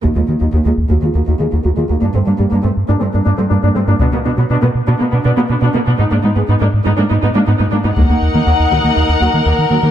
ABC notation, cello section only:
X:1
M:4/4
L:1/16
Q:1/4=121
K:Ebm
V:1 name="Cello section" clef=bass
E,, E,, E,, E,, E,, E,, z E,, E,, E,, E,, E,, E,, E,, E,, E,, | =G,, G,, G,, G,, G,, G,, z G,, G,, G,, G,, G,, G,, G,, G,, G,, | =B,, B,, B,, B,, B,, B,, z B,, B,, B,, B,, B,, B,, B,, B,, B,, | A,, A,, A,, A,, A,, A,, z A,, A,, A,, A,, A,, A,, A,, A,, A,, |
E,, E,, z E,, E,, z E,, E,, E,, z E,, E,, E,, z E,, E,, |]